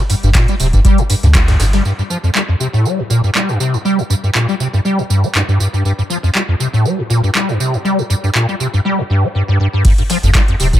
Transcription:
0.10 acid bass G2, open hi-hat, ride, tambourine
0.23 sub bass G1, acid bass G2, closed hi-hat, tambourine
0.35 acid bass A#2, kick, snare, clap, closed hi-hat, ride, tambourine
0.48 acid bass G3, closed hi-hat, tambourine
0.60 sub bass D1, acid bass C3, open hi-hat, ride, tambourine
0.73 sub bass F1, acid bass G2, kick, closed hi-hat, tambourine
0.85 acid bass G3, kick, closed hi-hat, tambourine
0.98 acid bass G2, closed hi-hat, tambourine
1.10 acid bass G2, open hi-hat, tambourine
1.23 sub bass D2, acid bass G2, snare, closed hi-hat, tambourine
1.35 acid bass G3, kick, snare, clap, closed hi-hat, ride, tambourine
1.48 acid bass G2, snare, closed hi-hat, ride, tambourine
1.60 sub bass G1, acid bass G2, snare, open hi-hat, ride, tambourine
1.73 acid bass G3, snare, closed hi-hat, ride, tambourine
1.85 acid bass G2, tambourine
1.98 acid bass G2, tambourine
2.10 acid bass F3, tambourine
2.23 acid bass F2, tambourine
2.35 acid bass G3, clap, tambourine
2.48 acid bass F2
2.60 acid bass C3, tambourine
2.73 acid bass A2, tambourine
2.85 acid bass G3, tambourine
2.98 acid bass G2
3.10 acid bass A#2, tambourine
3.23 acid bass G2, tambourine
3.35 acid bass G3, clap, tambourine
3.48 acid bass G2, tambourine
3.60 acid bass C3, tambourine
3.73 acid bass G2, tambourine
3.85 acid bass G3, tambourine
3.98 acid bass G2, tambourine
4.10 acid bass G2, tambourine
4.23 acid bass G2, tambourine
4.35 acid bass A#2, clap, tambourine
4.48 acid bass G3, tambourine
4.60 acid bass C3, tambourine
4.73 acid bass G2, tambourine
4.85 acid bass G3, tambourine
4.98 acid bass G2, tambourine
5.10 acid bass G2, tambourine
5.23 acid bass A#3, tambourine
5.35 acid bass G2, clap, tambourine
5.48 acid bass G2, tambourine
5.60 acid bass G2, tambourine
5.73 acid bass G2, tambourine
5.85 acid bass G2, tambourine
5.98 acid bass G2, tambourine
6.10 acid bass F3, tambourine
6.23 acid bass F2, tambourine
6.35 acid bass G3, clap, tambourine
6.48 acid bass F2
6.60 acid bass C3, tambourine
6.73 acid bass A2, tambourine
6.85 acid bass G3, tambourine
6.98 acid bass G2
7.10 acid bass A#2, tambourine
7.23 acid bass G2, tambourine
7.35 acid bass G3, clap, tambourine
7.48 acid bass G2, tambourine
7.60 acid bass C3, tambourine
7.73 acid bass G2, tambourine
7.85 acid bass G3, tambourine
7.98 acid bass G2, tambourine
8.10 acid bass G2, tambourine
8.23 acid bass G2, tambourine
8.35 acid bass A#2, clap, tambourine
8.48 acid bass G3, tambourine
8.60 acid bass C3, tambourine
8.73 acid bass G2, tambourine
8.85 acid bass G3
8.98 acid bass G2
9.10 acid bass G2
9.23 acid bass A#3
9.35 acid bass G2
9.48 acid bass G2
9.60 acid bass G2
9.73 acid bass G2
9.85 acid bass G2, kick, closed hi-hat, crash, ride, tambourine
9.98 acid bass G2, closed hi-hat, ride
10.10 acid bass F3, snare, open hi-hat, ride, tambourine
10.23 sub bass G1, acid bass F2, closed hi-hat, tambourine
10.35 acid bass G3, kick, snare, clap, closed hi-hat, ride, tambourine
10.48 acid bass F2, closed hi-hat
10.60 sub bass D1, acid bass C3, open hi-hat, ride, tambourine
10.73 sub bass F1, acid bass A2, kick, closed hi-hat, tambourine

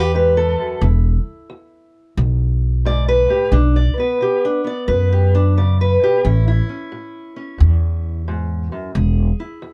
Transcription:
Already playing: upright bass E2, steel-string acoustic guitar C#4 G4 B4
0.14 steel-string acoustic guitar G#2 G4 B4
0.37 steel-string acoustic guitar A4
0.58 steel-string acoustic guitar F#2
0.81 upright bass E1, steel-string acoustic guitar E2 E4
1.50 steel-string acoustic guitar E2
2.17 upright bass B1, steel-string acoustic guitar E2
2.85 steel-string acoustic guitar G#2 D5
3.08 steel-string acoustic guitar B4
3.29 steel-string acoustic guitar A2 G4
3.52 upright bass B1, steel-string acoustic guitar B2 D4
3.76 steel-string acoustic guitar D5
3.98 steel-string acoustic guitar B3 B4
4.21 steel-string acoustic guitar B2 G4
4.45 steel-string acoustic guitar D4
4.64 steel-string acoustic guitar B3 D5
4.88 upright bass F#2, steel-string acoustic guitar B2 B4
5.12 steel-string acoustic guitar G4
5.35 steel-string acoustic guitar D4
5.57 steel-string acoustic guitar C#3 D5
5.81 steel-string acoustic guitar B4
6.01 steel-string acoustic guitar B2 G4
6.24 upright bass A1, steel-string acoustic guitar A2 C#4 E4
6.48 steel-string acoustic guitar E4
6.69 steel-string acoustic guitar C#4
6.92 steel-string acoustic guitar A2
7.36 steel-string acoustic guitar C#4
7.58 upright bass E2, steel-string acoustic guitar A2
8.28 steel-string acoustic guitar G#2
8.72 steel-string acoustic guitar F#2
8.95 upright bass E1, steel-string acoustic guitar E2 G#4
9.40 steel-string acoustic guitar E4
9.62 steel-string acoustic guitar E2

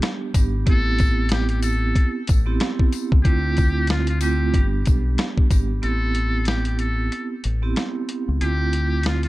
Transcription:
Already playing: vibraphone G3 B3 D4 G4
0.02 cross-stick, snare, closed hi-hat
0.34 fingered electric bass G#1, vibraphone G3 B3 D4 G4, kick, closed hi-hat, tambourine
0.66 fingered electric bass A1, vibraphone B3 C4 E4 G4, kick, closed hi-hat
0.71 muted trumpet A4
0.99 kick, closed hi-hat, tambourine
1.29 muted trumpet G4, cross-stick, snare, closed hi-hat
1.49 muted trumpet G4, closed hi-hat
1.63 muted trumpet A4, closed hi-hat, tambourine
1.96 kick, closed hi-hat
2.27 fingered electric bass A1, kick, closed hi-hat, tambourine
2.46 vibraphone B3 C4 E4 G4
2.60 cross-stick, snare, closed hi-hat
2.79 kick
2.93 closed hi-hat, tambourine
3.12 fingered electric bass C#2, kick
3.23 fingered electric bass D2, vibraphone A3 C4 E4 F4, muted trumpet G4, kick, closed hi-hat
3.57 kick, closed hi-hat, tambourine
3.87 muted trumpet F4, cross-stick, snare, closed hi-hat
4.07 muted trumpet F4, closed hi-hat
4.21 vibraphone A3 C4 E4 F4, muted trumpet G4, closed hi-hat, tambourine
4.54 fingered electric bass G1, vibraphone G3 B3 D4 G4, kick, closed hi-hat
4.86 fingered electric bass B1, kick, closed hi-hat, tambourine
5.18 cross-stick, snare, closed hi-hat
5.38 kick
5.50 fingered electric bass G#1, vibraphone G3 B3 D4 G4, kick, closed hi-hat, tambourine
5.82 fingered electric bass A1, vibraphone B3 C4 E4 G4, muted trumpet A4, closed hi-hat
6.15 closed hi-hat
6.45 muted trumpet G4, cross-stick, snare, closed hi-hat
6.65 muted trumpet G4, closed hi-hat
6.79 muted trumpet A4, closed hi-hat
7.12 closed hi-hat
7.44 fingered electric bass A1, closed hi-hat
7.62 vibraphone B3 C4 E4 G4
7.76 cross-stick, snare, closed hi-hat
8.09 closed hi-hat
8.28 fingered electric bass C#2
8.41 fingered electric bass D2, vibraphone A3 C4 E4 F4, muted trumpet G4, closed hi-hat
8.73 closed hi-hat
9.03 muted trumpet F4, cross-stick, snare, closed hi-hat
9.23 muted trumpet F4, closed hi-hat

